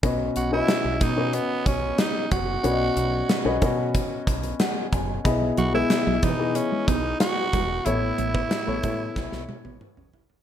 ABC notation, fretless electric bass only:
X:1
M:4/4
L:1/16
Q:1/4=92
K:Bmix
V:1 name="Fretless electric bass" clef=bass
B,,,2 B,,,2 z B,,, B,,3 z B,,,2 z2 F,,,2 | B,,,2 B,,,2 z B,,, B,,3 z B,,,2 z2 F,,,2 | B,,,2 B,,,2 z B,,, B,,3 z B,,,2 z2 E,,,2 | A,,,2 A,,,2 z A,,, A,,2 B,,, B,,, z A,,, z A,,, F,,, E,,, |]